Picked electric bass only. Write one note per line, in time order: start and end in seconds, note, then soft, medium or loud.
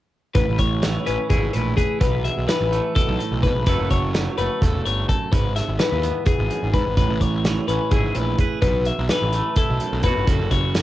0.35 0.44 A1 medium
0.48 0.57 A1 medium
0.59 0.96 A1 medium
1.08 1.16 A1 medium
1.30 1.49 G#1 medium
1.55 1.73 A#1 medium
2.01 2.29 B1 medium
2.38 2.46 B1 medium
2.61 2.79 A1 medium
3.08 3.17 B1 medium
3.31 3.45 B1 medium
3.43 3.52 B2 medium
3.55 3.64 B1 medium
3.67 3.76 F#1 medium
3.79 3.88 F#1 medium
3.91 4.27 F#1 medium
4.38 4.47 F#1 medium
4.62 4.80 E1 medium
4.86 5.04 G1 medium
5.32 5.60 G#1 medium
5.68 5.77 G#1 medium
5.92 6.10 D#2 medium
6.39 6.48 G#1 medium
6.63 6.75 G#1 medium
6.74 6.83 G#2 medium
6.86 6.95 G#1 medium
6.97 7.07 A1 medium
7.10 7.19 A1 medium
7.21 7.57 A1 medium
7.69 7.78 A1 medium
7.92 8.10 G#1 medium
8.15 8.34 A#1 medium
8.62 8.90 B1 medium
8.99 9.08 B1 medium
9.22 9.40 A1 medium
9.70 9.79 B1 medium
9.93 10.05 B1 medium
10.04 10.13 B2 medium
10.17 10.26 G1 medium
10.27 10.37 F#1 medium
10.39 10.49 F#1 medium
10.51 10.82 F#1 medium